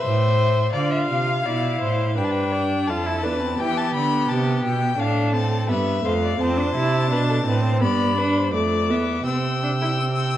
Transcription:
0.00 0.73 A2 medium
0.00 0.72 C5 loud
0.00 0.71 E5 medium
0.73 1.08 D3 medium
0.73 1.42 F4 medium
0.73 0.93 D5 medium
0.73 2.19 F5 medium
0.91 1.07 E5 medium
1.08 1.45 C3 medium
1.08 1.47 F5 medium
1.45 1.81 B2 medium
1.45 2.16 E4 medium
1.45 1.81 D5 medium
1.81 2.19 A2 medium
1.81 2.16 C5 medium
2.17 2.90 G2 medium
2.17 2.91 D4 medium
2.17 2.54 B4 medium
2.17 2.26 G5 medium
2.24 2.33 A5 medium
2.31 2.89 G5 medium
2.52 2.89 D5 medium
2.87 3.25 F2 medium
2.87 3.08 F4 medium
2.87 3.24 A4 medium
2.87 3.61 A5 medium
3.06 3.25 E4 medium
3.23 3.59 E2 medium
3.23 3.43 D4 medium
3.23 3.58 B4 medium
3.41 3.58 C4 medium
3.58 3.93 E3 medium
3.58 4.96 B3 medium
3.58 4.96 G4 medium
3.58 3.79 G5 medium
3.77 3.94 A5 medium
3.94 4.28 D3 medium
3.94 4.30 B5 medium
4.29 4.63 C3 medium
4.29 4.64 A5 medium
4.64 4.98 B2 medium
4.64 5.01 G5 medium
4.98 5.67 A2 medium
4.98 5.35 D4 medium
4.98 5.67 A4 medium
4.98 5.33 F5 medium
5.33 5.70 C4 medium
5.33 5.68 A5 medium
5.68 6.03 G2 medium
5.68 6.03 B3 medium
5.68 6.04 B4 medium
5.68 6.06 E5 medium
6.04 6.39 F2 medium
6.04 6.39 A3 medium
6.04 6.12 C5 medium
6.04 6.42 F5 medium
6.23 6.40 D5 medium
6.40 6.75 F2 medium
6.40 6.59 C4 medium
6.40 7.10 C5 medium
6.40 7.81 A5 medium
6.57 6.74 D4 medium
6.75 7.12 C3 medium
6.75 7.10 E4 medium
7.10 7.45 B2 medium
7.10 7.45 D4 medium
7.10 7.19 B4 medium
7.30 7.36 A4 medium
7.46 7.83 A2 medium
7.46 7.82 C4 medium
7.46 7.64 B4 medium
7.65 7.82 C5 medium
7.81 8.54 G2 medium
7.81 8.17 B3 medium
7.81 8.20 D5 medium
7.81 8.52 B5 medium
8.18 8.53 D4 medium
8.18 8.39 B4 medium
8.37 8.54 C5 medium
8.53 8.91 F2 medium
8.53 8.92 A3 medium
8.53 8.93 D5 medium
8.53 9.25 D6 medium
8.89 9.25 E2 medium
8.89 9.26 B3 medium
8.89 9.26 E5 medium
9.26 10.38 C3 medium
9.26 9.62 C4 medium
9.26 10.38 G5 medium
9.26 10.38 E6 medium
9.63 9.70 D4 medium
9.82 9.89 E4 medium
9.99 10.37 C4 medium

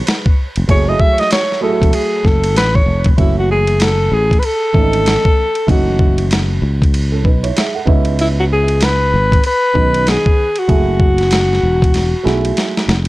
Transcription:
0.07 snare loud
0.07 hi-hat pedal soft
0.07 ride medium
0.26 kick medium
0.56 0.67 F1 medium
0.56 ride medium
0.68 0.94 F#1 loud
0.68 0.81 F#3 medium
0.68 0.82 A3 medium
0.68 0.82 E4 medium
0.68 0.82 G#4 medium
0.68 0.90 C#5 loud
0.68 kick loud
0.68 ride medium
0.87 1.39 F#3 medium
0.87 1.40 A3 medium
0.87 1.40 E4 medium
0.87 1.40 G#4 medium
0.87 1.02 D#5 loud
1.00 1.22 E5 loud
1.00 kick medium
1.18 1.32 D#5 loud
1.18 snare soft
1.18 ride medium
1.31 1.61 C#5 loud
1.31 snare loud
1.31 hi-hat pedal medium
1.31 ride medium
1.52 snare soft
1.61 2.50 F#3 medium
1.61 2.50 A3 medium
1.61 2.50 E4 medium
1.61 1.70 G#4 medium
1.61 1.96 A4 medium
1.69 2.54 F#4 medium
1.82 1.91 E1 medium
1.82 kick medium
1.82 ride medium
1.93 2.28 G#4 medium
1.93 ride medium
2.25 2.55 F#1 medium
2.25 2.57 A4 medium
2.25 kick medium
2.25 snare soft
2.44 ride medium
2.55 2.81 A1 medium
2.55 2.77 B4 loud
2.55 snare loud
2.55 hi-hat pedal soft
2.55 ride medium
2.75 3.07 C#5 medium
2.75 kick medium
2.86 3.12 F1 loud
3.04 kick medium
3.04 ride medium
3.17 4.08 F#1 medium
3.17 4.06 E3 medium
3.17 4.06 A3 medium
3.17 4.06 C#4 medium
3.17 3.37 E4 medium
3.17 4.07 F#4 medium
3.17 kick loud
3.17 ride medium
3.39 3.50 F#4 medium
3.51 3.85 G#4 loud
3.67 ride medium
3.80 4.15 A4 loud
3.80 snare loud
3.80 hi-hat pedal medium
3.80 ride medium
4.12 4.37 A1 medium
4.12 4.41 G#4 medium
4.31 kick medium
4.31 ride medium
4.39 4.47 B4 medium
4.39 ride medium
4.45 5.69 A4 loud
4.73 5.16 G#1 medium
4.73 5.39 E3 medium
4.73 5.40 A3 medium
4.73 5.40 C#4 medium
4.73 4.83 D4 medium
4.73 kick medium
4.81 5.43 D#4 medium
4.93 ride medium
5.06 snare loud
5.06 hi-hat pedal soft
5.06 ride medium
5.25 kick medium
5.55 ride soft
5.67 6.58 F#1 medium
5.67 6.56 E3 medium
5.67 6.56 A3 medium
5.67 6.56 C#4 medium
5.67 6.56 D#4 medium
5.67 6.28 F#4 medium
5.67 kick loud
5.67 ride medium
5.99 kick medium
6.18 ride medium
6.31 snare loud
6.31 hi-hat pedal medium
6.31 ride medium
6.62 7.25 C#2 loud
6.82 kick medium
6.82 ride medium
6.94 ride medium
7.12 7.24 C#4 medium
7.12 7.24 A4 medium
7.25 7.50 B1 medium
7.25 7.43 D#4 medium
7.25 7.43 B4 medium
7.25 kick medium
7.43 7.55 E4 medium
7.43 7.55 C#5 medium
7.43 ride medium
7.56 7.74 G#4 medium
7.56 7.74 E5 medium
7.56 snare loud
7.56 hi-hat pedal soft
7.56 ride medium
7.75 8.05 A4 medium
7.75 8.05 F#5 medium
7.85 9.15 C#2 loud
7.85 8.88 B3 medium
7.85 8.88 C#4 medium
7.85 8.88 D#4 medium
7.85 8.89 E4 medium
7.85 kick loud
8.05 ride medium
8.19 8.29 E4 medium
8.19 ride medium
8.40 8.45 F#4 medium
8.53 8.85 G#4 loud
8.68 ride medium
8.81 9.45 B4 loud
8.81 snare loud
8.81 hi-hat pedal medium
8.81 ride medium
9.14 9.38 G#1 loud
9.32 kick medium
9.32 ride medium
9.44 10.11 B4 loud
9.44 ride medium
9.74 10.16 B1 medium
9.74 10.39 D#3 medium
9.74 10.40 B3 medium
9.74 10.40 C#4 medium
9.74 10.40 D#4 medium
9.74 kick medium
9.94 ride medium
10.07 10.61 G#4 medium
10.07 snare medium
10.07 hi-hat pedal soft
10.07 ride medium
10.26 kick medium
10.56 12.57 F#4 medium
10.56 ride medium
10.68 11.59 F#1 medium
10.68 11.56 F#3 medium
10.68 11.56 A3 medium
10.68 11.57 E4 medium
10.68 11.57 G#4 medium
10.68 kick loud
10.68 ride medium
11.00 kick medium
11.18 snare soft
11.18 ride medium
11.31 snare loud
11.31 hi-hat pedal medium
11.31 ride medium
11.53 snare soft
11.63 12.13 E1 medium
11.82 kick medium
11.82 ride medium
11.94 snare medium
11.94 ride medium
12.23 12.51 B1 medium
12.23 12.89 F#3 medium
12.23 12.90 A3 medium
12.23 12.90 E4 medium
12.23 12.90 G#4 medium
12.23 snare medium
12.45 ride medium
12.57 snare medium
12.57 hi-hat pedal soft
12.57 ride medium
12.77 snare medium
12.88 13.08 F1 medium
12.88 snare loud
13.05 ride medium

